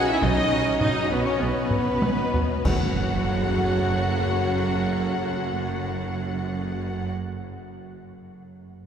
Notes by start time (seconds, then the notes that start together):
Already playing: D#3 C#4 F#4 C#5 D#5
0.08 E4 E5
0.22 B1 B2 D#4 D#5, taiko
0.51 B1 B2
0.80 B1 B2 D#4 D#5, taiko low-mid
1.10 B1 B2 B3 B4
1.25 C#4 C#5
1.40 B1 B2 B3 B4
1.71 taiko low-mid
2.01 B1 B2, taiko high
2.33 B1 B2, taiko low
2.65 F#1 F#2 C#3 F#3 A3 C#4 F#4 A4 C#5 F#5, concert bass drum, taiko, crash, impact